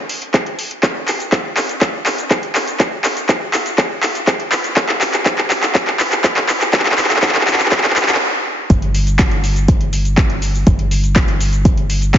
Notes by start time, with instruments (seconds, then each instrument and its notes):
0.09 open hi-hat
0.22 closed hi-hat
0.34 kick, clap, closed hi-hat
0.46 closed hi-hat
0.59 open hi-hat
0.71 closed hi-hat
0.83 kick, clap, closed hi-hat, shaker
1.08 clap, open hi-hat, shaker
1.20 closed hi-hat, shaker
1.32 kick, clap, closed hi-hat, shaker
1.57 clap, open hi-hat, shaker
1.69 closed hi-hat, shaker
1.81 kick, clap, closed hi-hat, shaker
2.06 clap, open hi-hat, shaker
2.18 closed hi-hat, shaker
2.31 kick, clap, closed hi-hat, shaker
2.43 closed hi-hat
2.55 clap, open hi-hat, shaker
2.67 closed hi-hat, shaker
2.80 kick, clap, closed hi-hat, shaker
3.04 clap, open hi-hat, shaker
3.17 closed hi-hat, shaker
3.29 kick, clap, closed hi-hat, shaker
3.54 clap, open hi-hat, shaker
3.66 closed hi-hat, shaker
3.78 kick, clap, closed hi-hat, shaker
4.03 clap, open hi-hat, shaker
4.15 closed hi-hat, shaker
4.27 kick, clap, closed hi-hat, shaker
4.40 closed hi-hat
4.52 clap, open hi-hat, shaker
4.64 closed hi-hat, shaker
4.77 kick, clap, closed hi-hat, shaker
4.89 clap
5.01 clap, open hi-hat, shaker
5.13 clap, closed hi-hat, shaker
5.26 kick, clap, closed hi-hat, shaker
5.38 clap
5.50 clap, open hi-hat, shaker
5.63 clap, closed hi-hat, shaker
5.75 kick, clap, closed hi-hat, shaker
5.87 clap
6.00 clap, open hi-hat, shaker
6.12 clap, closed hi-hat, shaker
6.24 kick, clap, closed hi-hat, shaker
6.37 clap, closed hi-hat
6.49 clap, open hi-hat, shaker
6.61 clap, closed hi-hat, shaker
6.73 kick, clap, closed hi-hat, shaker
6.80 clap
6.86 clap, closed hi-hat
6.92 clap
6.98 clap, open hi-hat, shaker
7.04 clap
7.10 clap, closed hi-hat, shaker
7.16 clap
7.22 kick, clap, closed hi-hat, shaker
7.29 clap
7.35 clap, closed hi-hat
7.41 clap
7.47 clap, open hi-hat, shaker
7.53 clap
7.59 clap, closed hi-hat, shaker
7.66 clap
7.72 kick, clap, closed hi-hat, shaker
7.78 clap
7.84 clap, closed hi-hat
7.90 clap
7.96 clap, open hi-hat, shaker
8.02 clap
8.09 clap, closed hi-hat, shaker
8.15 clap
8.70 analog synth bass G1, kick, closed hi-hat, shaker
8.82 closed hi-hat
8.95 open hi-hat, shaker
9.07 closed hi-hat, shaker
9.19 kick, clap, closed hi-hat, shaker
9.31 closed hi-hat
9.44 open hi-hat, shaker
9.56 closed hi-hat, shaker
9.68 kick, closed hi-hat, shaker
9.81 closed hi-hat
9.93 open hi-hat, shaker
10.05 closed hi-hat, shaker
10.18 kick, clap, closed hi-hat, shaker
10.30 closed hi-hat
10.42 open hi-hat, shaker
10.55 shaker
10.67 analog synth bass G1, kick, closed hi-hat, shaker
10.79 closed hi-hat
10.91 open hi-hat, shaker
11.04 closed hi-hat, shaker
11.16 kick, clap, closed hi-hat, shaker
11.28 closed hi-hat
11.41 open hi-hat, shaker
11.53 closed hi-hat, shaker
11.65 kick, closed hi-hat, shaker
11.78 closed hi-hat
11.90 open hi-hat, shaker
12.02 closed hi-hat, shaker
12.14 kick, clap, closed hi-hat, shaker